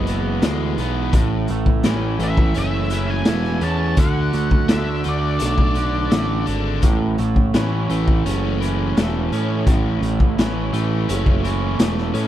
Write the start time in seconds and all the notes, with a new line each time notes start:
Already playing: F#1 E3 G#3 B3
0.07 E3 B3, closed hi-hat
0.42 D2 E3 G#3, snare, closed hi-hat
0.78 B1 B3, closed hi-hat
1.13 A1 A2, kick, closed hi-hat
1.48 A1 A3, closed hi-hat
1.66 kick
1.83 A1 E3 C#4, snare, closed hi-hat
2.19 A1 E3 A3, closed hi-hat
2.23 E5
2.37 kick
2.54 F#1 A3 C#4, closed hi-hat
2.59 E5
2.90 E3 C#4, closed hi-hat
3.10 G#5
3.25 E1 E3 A3, snare, closed hi-hat
3.44 snare
3.61 E2 C#4 A5, closed hi-hat
3.97 D2 D3 F#5, kick, closed hi-hat
4.33 D2 A3, closed hi-hat
4.51 kick
4.68 D2 D3 D4 E5, snare, closed hi-hat
5.04 D2 D3 A3, closed hi-hat
5.08 D5
5.39 B1 A3 D4, closed hi-hat
5.58 kick
5.75 D3 D4, closed hi-hat
6.10 A1 D3 A3, snare, closed hi-hat
6.46 G#1 D4, closed hi-hat
6.82 A1 A2, kick, closed hi-hat
7.18 A1 A3, closed hi-hat
7.36 kick
7.54 A1 E3 C#4, snare, closed hi-hat
7.89 A1 E3 A3, closed hi-hat
8.08 kick
8.26 F#1 A3 C#4, closed hi-hat
8.60 E3 C#4, closed hi-hat
8.97 E1 E3 A3, snare, closed hi-hat
9.32 A2 C#4, closed hi-hat
9.66 A1 A2, kick, closed hi-hat
10.01 A1 A3, closed hi-hat
10.20 kick
10.38 A1 E3 C#4, snare, closed hi-hat
10.73 A1 E3 A3, closed hi-hat
11.09 F#1 A3 C#4, closed hi-hat
11.26 kick
11.44 E3 C#4, closed hi-hat
11.79 E1 E3 A3, snare, closed hi-hat
11.98 snare
12.14 A2 C#4, closed hi-hat